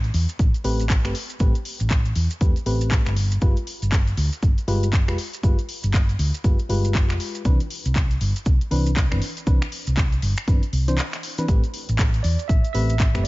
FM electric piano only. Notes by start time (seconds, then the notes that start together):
0.64 A3 C4 G4 B4
1.05 A3 C4 G4 B4
1.40 A3 C4 G4 B4
2.41 A3 C4 G4 B4
2.66 A3 C4 G4 B4
3.42 G#3 F4 G4 B4
4.68 G#3 F4 G4 B4
5.08 G#3 F4 G4 B4
5.43 G#3 F4 G4 B4
6.44 G#3 F4 G4 B4
6.69 G#3 F4 G4 B4
7.45 E3 C4 D4 B4
8.71 E3 C4 D4 B4
9.11 E3 C4 D4 B4
9.47 E3 C4 D4 B4
10.47 E3 C4 D4 B4
10.88 E3 C4 D4 C5
11.38 E3 C4 D4 B4
11.48 A3 C4 G4 B4
12.74 A3 C4 G4 B4
13.15 A3 C4 G4 B4